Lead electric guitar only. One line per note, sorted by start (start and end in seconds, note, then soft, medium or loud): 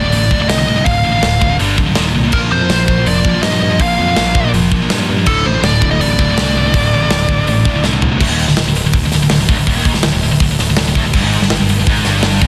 0.00 0.41 D5 loud
0.42 0.49 D5 medium
0.49 0.85 D#5 medium
0.85 1.56 F5 loud
2.33 2.38 A#4 medium
2.52 3.09 C5 medium
3.07 3.42 D5 medium
3.43 3.81 D#5 medium
3.82 4.50 F5 medium
5.27 5.46 A4 medium
5.46 5.64 C5 medium
5.64 5.90 D5 medium
5.91 6.01 D#5 loud
6.01 7.84 D5 loud